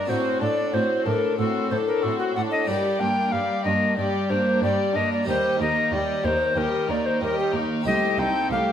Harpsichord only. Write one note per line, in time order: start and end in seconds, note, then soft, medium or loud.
0.04 2.62 A3 soft
0.04 2.63 D4 soft
0.04 2.64 F#4 soft
0.08 0.38 A2 soft
0.41 0.71 A2 soft
0.74 1.03 A2 soft
1.06 1.36 A2 soft
1.39 1.68 A2 soft
1.72 2.01 A2 soft
2.04 2.33 A2 soft
2.37 2.65 A2 soft
2.64 5.22 A#3 soft
2.64 5.22 D4 soft
2.64 5.23 G4 soft
2.69 2.98 G2 soft
3.01 3.30 G2 soft
3.33 3.62 G2 soft
3.65 3.94 G2 soft
3.97 4.27 G2 soft
4.30 4.60 G2 soft
5.23 7.80 A#3 soft
5.23 7.81 G4 soft
5.23 7.82 A#4 soft
5.28 5.57 D#2 soft
5.60 5.89 D#2 soft
5.92 6.21 D#2 soft
6.24 6.53 D#2 soft
6.57 6.86 D#2 soft
6.89 7.18 D#2 soft
7.22 7.51 D#2 soft
7.54 7.83 D#2 soft
7.82 8.72 C4 soft
7.82 8.72 G4 soft
7.82 8.72 A4 soft
7.86 8.15 C2 soft
8.19 8.48 C2 soft
8.51 8.72 C2 soft